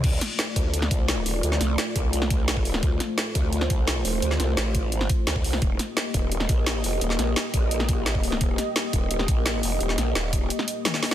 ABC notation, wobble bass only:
X:1
M:4/4
L:1/8
Q:1/4=172
K:Dphr
V:1 name="Wobble bass" clef=bass
D,, z2 D,,2 C,,2 E,,, | D,, C,, z C,,4- C,, | D,, z2 D,,2 C,,2 E,,, | D,, C,, A,,,3 z D,, C,, |
E,,, z2 E,,,2 B,,,2 F,,, | E,,, B,,, z B,,,4- B,,, | E,,, z2 E,,,2 B,,,2 F,,, | E,,, B,,, E,,,2 z4 |]